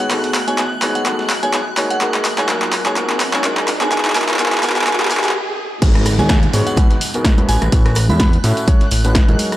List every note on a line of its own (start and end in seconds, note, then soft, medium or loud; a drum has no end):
0.00 1.77 A3 medium
0.00 1.77 B3 loud
0.00 1.77 F#4 medium
0.00 5.34 D#5 medium
0.00 0.09 F#5 medium
0.00 5.34 F#6 medium
0.00 closed hi-hat soft
0.00 riser medium
0.11 0.34 G#2 medium
0.11 0.34 B3 medium
0.11 0.34 F#4 medium
0.11 0.34 G#4 medium
0.11 0.34 A4 medium
0.11 clap medium
0.11 closed hi-hat medium
0.11 open hi-hat medium
0.24 snare medium
0.24 closed hi-hat soft
0.34 clap medium
0.34 closed hi-hat medium
0.34 open hi-hat loud
0.48 0.61 G#2 medium
0.48 0.61 B3 medium
0.48 0.61 F#4 medium
0.48 0.61 G#4 medium
0.48 0.61 C#5 medium
0.48 0.54 G#5 medium
0.48 closed hi-hat soft
0.58 0.67 G#5 medium
0.58 snare loud
0.58 clap medium
0.58 closed hi-hat medium
0.82 1.03 G#2 medium
0.82 1.03 B3 medium
0.82 1.03 F#4 medium
0.82 1.03 G#4 medium
0.82 1.03 C#5 loud
0.82 snare soft
0.82 clap medium
0.82 closed hi-hat medium
0.82 open hi-hat medium
0.95 1.04 F#5 medium
0.95 closed hi-hat medium
1.06 1.30 G#2 medium
1.06 1.30 B3 medium
1.06 1.30 F#4 medium
1.06 1.30 G#4 medium
1.06 1.30 A4 medium
1.06 clap medium
1.06 closed hi-hat medium
1.19 snare medium
1.30 clap medium
1.30 closed hi-hat medium
1.30 open hi-hat loud
1.43 1.57 G#2 medium
1.43 1.57 B3 medium
1.43 1.57 F#4 medium
1.43 1.57 G#4 medium
1.43 1.57 C#5 medium
1.43 1.50 G#5 medium
1.43 closed hi-hat medium
1.53 1.62 G#5 medium
1.53 snare loud
1.53 clap medium
1.53 closed hi-hat medium
1.77 1.99 G#2 medium
1.77 3.68 F#3 medium
1.77 1.99 A#3 medium
1.77 1.99 F#4 medium
1.77 1.99 G#4 medium
1.77 1.99 C#5 loud
1.77 clap medium
1.77 closed hi-hat medium
1.77 open hi-hat medium
1.90 1.99 F#5 medium
1.90 closed hi-hat medium
1.96 5.35 F4 medium
2.01 2.25 G#2 medium
2.01 2.25 A#3 medium
2.01 2.25 F#4 medium
2.01 2.25 G#4 medium
2.01 2.25 A#4 medium
2.01 clap medium
2.01 closed hi-hat medium
2.14 snare soft
2.14 clap medium
2.14 closed hi-hat soft
2.19 5.34 A#4 medium
2.25 clap medium
2.25 closed hi-hat medium
2.25 open hi-hat loud
2.38 2.47 G#2 medium
2.38 2.47 A#3 medium
2.38 2.47 F#4 medium
2.38 2.47 G#4 medium
2.38 2.47 C#5 medium
2.38 2.45 G#5 medium
2.38 snare soft
2.38 clap medium
2.38 closed hi-hat soft
2.49 2.72 G#2 medium
2.49 2.72 A#3 medium
2.49 2.72 F#4 medium
2.49 2.72 G#4 medium
2.49 2.72 A#4 loud
2.49 snare loud
2.49 clap medium
2.49 closed hi-hat medium
2.62 snare soft
2.62 clap medium
2.73 clap medium
2.73 closed hi-hat medium
2.73 open hi-hat medium
2.86 2.95 G#2 medium
2.86 2.95 A#3 medium
2.86 2.95 F#4 medium
2.86 2.95 G#4 medium
2.86 2.95 C#5 medium
2.86 2.93 G#5 medium
2.86 clap medium
2.86 closed hi-hat medium
2.96 3.20 G#2 medium
2.96 3.20 A#3 medium
2.96 3.20 F#4 medium
2.96 3.20 G#4 medium
2.96 3.20 A#4 medium
2.96 clap loud
2.96 closed hi-hat medium
3.10 snare medium
3.10 clap medium
3.20 clap medium
3.20 closed hi-hat medium
3.20 open hi-hat loud
3.33 3.42 G#2 medium
3.33 3.42 A#3 medium
3.33 3.42 F#4 medium
3.33 3.42 G#4 medium
3.33 3.42 C#5 loud
3.33 3.40 G#5 medium
3.33 clap medium
3.33 closed hi-hat medium
3.44 3.68 G#2 medium
3.44 3.68 A#3 medium
3.44 3.68 F#4 medium
3.44 3.68 G#4 medium
3.44 3.68 A#4 loud
3.44 snare loud
3.44 clap loud
3.44 closed hi-hat medium
3.57 clap medium
3.68 5.34 B3 medium
3.68 snare loud
3.68 clap loud
3.68 closed hi-hat medium
3.68 open hi-hat medium
3.81 3.90 G#2 medium
3.81 3.90 B3 medium
3.81 3.90 F#4 medium
3.81 3.90 G#4 medium
3.81 3.90 C#5 medium
3.81 3.88 G#5 medium
3.81 clap medium
3.81 closed hi-hat medium
3.91 4.14 G#2 medium
3.91 4.14 B3 medium
3.91 4.14 F#4 medium
3.91 4.14 G#4 medium
3.91 4.14 A#4 medium
3.91 4.00 G#5 medium
3.91 clap loud
3.91 closed hi-hat medium
3.98 clap medium
4.05 4.12 G#5 medium
4.05 snare loud
4.05 clap medium
4.05 closed hi-hat medium
4.05 closed hi-hat soft
4.10 clap medium
4.15 4.37 G#2 medium
4.15 4.37 B3 medium
4.15 4.37 F#4 medium
4.15 4.37 G#4 medium
4.15 4.37 A#4 medium
4.15 4.24 G#5 loud
4.15 clap loud
4.15 open hi-hat loud
4.22 clap medium
4.29 4.35 G#5 medium
4.29 clap medium
4.29 closed hi-hat medium
4.34 clap medium
4.39 4.61 G#2 medium
4.39 4.61 B3 medium
4.39 4.61 F#4 medium
4.39 4.61 G#4 medium
4.39 4.61 A#4 loud
4.39 4.48 G#5 medium
4.39 snare loud
4.39 clap loud
4.39 closed hi-hat medium
4.46 clap medium
4.52 4.59 G#5 medium
4.52 clap medium
4.52 closed hi-hat soft
4.58 clap medium
4.63 4.85 G#2 medium
4.63 4.85 B3 medium
4.63 4.85 F#4 medium
4.63 4.85 G#4 medium
4.63 4.85 A#4 loud
4.63 4.71 G#5 medium
4.63 snare soft
4.63 clap loud
4.63 closed hi-hat medium
4.63 open hi-hat medium
4.70 clap loud
4.76 4.83 G#5 medium
4.76 clap medium
4.76 closed hi-hat medium
4.81 clap loud
4.87 5.09 G#2 medium
4.87 5.09 B3 medium
4.87 5.09 F#4 medium
4.87 5.09 G#4 medium
4.87 5.09 A#4 medium
4.87 4.95 G#5 medium
4.87 clap loud
4.87 closed hi-hat medium
4.93 clap loud
5.00 5.07 G#5 medium
5.00 snare soft
5.00 clap medium
5.00 closed hi-hat soft
5.05 clap loud
5.11 5.33 G#2 medium
5.11 5.33 B3 medium
5.11 5.33 F#4 medium
5.11 5.33 G#4 medium
5.11 5.33 A#4 loud
5.11 5.19 G#5 medium
5.11 clap loud
5.11 closed hi-hat medium
5.11 open hi-hat loud
5.17 clap loud
5.24 5.31 G#5 medium
5.24 clap loud
5.24 closed hi-hat medium
5.29 clap medium
5.82 6.21 G#1 loud
5.82 6.06 G#2 medium
5.82 6.06 B3 medium
5.82 6.06 F#4 medium
5.82 6.06 G#4 medium
5.82 6.06 A#4 medium
5.82 9.57 F#6 medium
5.82 kick loud
5.82 closed hi-hat medium
5.82 crash loud
5.82 tambourine soft
5.82 downlifter medium
5.95 cross-stick medium
5.95 snare soft
5.95 closed hi-hat soft
6.05 cross-stick medium
6.05 closed hi-hat medium
6.05 open hi-hat loud
6.05 tambourine medium
6.19 6.48 D#2 loud
6.19 6.33 G#2 medium
6.19 6.33 B3 medium
6.19 6.33 F#4 medium
6.19 6.33 G#4 medium
6.19 6.33 C#5 loud
6.19 6.26 G#5 medium
6.19 snare soft
6.19 closed hi-hat soft
6.19 tambourine soft
6.19 high conga medium
6.29 6.38 G#5 medium
6.29 kick loud
6.29 snare loud
6.29 closed hi-hat medium
6.29 closed hi-hat loud
6.29 tambourine soft
6.43 snare soft
6.43 closed hi-hat soft
6.53 6.62 G#2 loud
6.53 6.75 G#2 loud
6.53 6.75 B3 medium
6.53 6.75 F#4 medium
6.53 6.75 G#4 medium
6.53 6.75 C#5 loud
6.53 closed hi-hat medium
6.53 open hi-hat medium
6.53 tambourine loud
6.67 6.77 F#5 medium
6.67 closed hi-hat soft
6.67 tambourine medium
6.77 6.93 G#2 medium
6.77 6.93 B3 medium
6.77 6.93 G#4 medium
6.77 6.93 B4 medium
6.77 kick loud
6.77 closed hi-hat medium
6.77 closed hi-hat loud
6.77 tambourine soft
6.77 high conga medium
6.90 snare medium
6.90 closed hi-hat soft
7.01 closed hi-hat medium
7.01 open hi-hat loud
7.01 tambourine medium
7.14 7.35 G#2 medium
7.14 7.35 B3 medium
7.14 7.35 F#4 medium
7.14 7.35 G#4 medium
7.14 7.35 A#4 medium
7.14 closed hi-hat soft
7.14 tambourine soft
7.25 kick loud
7.25 snare loud
7.25 closed hi-hat medium
7.25 tambourine soft
7.38 7.70 A2 medium
7.38 7.70 C#4 medium
7.38 7.70 F#4 medium
7.38 7.70 A4 medium
7.38 7.70 B4 medium
7.38 closed hi-hat soft
7.38 high conga medium
7.49 7.58 A1 loud
7.49 7.62 G#5 medium
7.49 closed hi-hat medium
7.49 open hi-hat medium
7.49 tambourine loud
7.62 7.69 A1 loud
7.62 cross-stick medium
7.62 closed hi-hat soft
7.62 tambourine soft
7.72 8.11 A1 loud
7.72 7.96 A2 medium
7.72 7.96 C#4 medium
7.72 7.96 F#4 medium
7.72 7.96 A4 medium
7.72 7.96 B4 medium
7.72 kick loud
7.72 closed hi-hat medium
7.72 open hi-hat medium
7.72 tambourine soft
7.86 cross-stick medium
7.86 snare medium
7.86 closed hi-hat soft
7.95 cross-stick medium
7.95 closed hi-hat medium
7.95 open hi-hat loud
7.95 tambourine medium
8.09 8.38 E2 loud
8.09 8.23 A2 medium
8.09 8.23 C#4 medium
8.09 8.23 F#4 medium
8.09 8.23 A4 medium
8.09 8.23 E5 loud
8.09 8.16 B5 medium
8.09 closed hi-hat soft
8.09 tambourine medium
8.09 high conga loud
8.20 8.29 B5 medium
8.20 kick loud
8.20 snare loud
8.20 closed hi-hat loud
8.20 closed hi-hat medium
8.20 tambourine soft
8.33 closed hi-hat soft
8.44 8.53 A2 loud
8.44 8.65 A2 loud
8.44 8.65 C#4 medium
8.44 8.65 F#4 loud
8.44 8.65 A4 medium
8.44 8.65 E5 loud
8.44 snare soft
8.44 closed hi-hat medium
8.44 open hi-hat loud
8.44 tambourine loud
8.57 closed hi-hat soft
8.57 tambourine medium
8.67 8.83 A2 medium
8.67 8.83 C#4 medium
8.67 8.83 F#4 medium
8.67 8.83 A4 medium
8.67 8.83 C#5 loud
8.67 kick loud
8.67 closed hi-hat medium
8.67 tambourine soft
8.67 high conga medium
8.81 snare medium
8.81 closed hi-hat soft
8.91 9.22 A1 medium
8.91 snare medium
8.91 closed hi-hat medium
8.91 open hi-hat loud
8.91 tambourine medium
9.04 9.25 A2 medium
9.04 9.25 C#4 medium
9.04 9.25 F#4 medium
9.04 9.25 A4 medium
9.04 9.25 B4 medium
9.04 closed hi-hat soft
9.04 tambourine medium
9.15 kick loud
9.15 snare loud
9.15 closed hi-hat medium
9.15 tambourine soft
9.28 9.36 A1 loud
9.28 9.57 F#3 medium
9.28 9.57 D#4 medium
9.28 9.57 F#4 medium
9.28 9.57 G#4 medium
9.28 9.57 A#4 medium
9.28 closed hi-hat soft
9.28 high conga loud
9.39 closed hi-hat medium
9.39 open hi-hat loud
9.39 tambourine medium
9.52 cross-stick medium
9.52 closed hi-hat soft
9.52 tambourine medium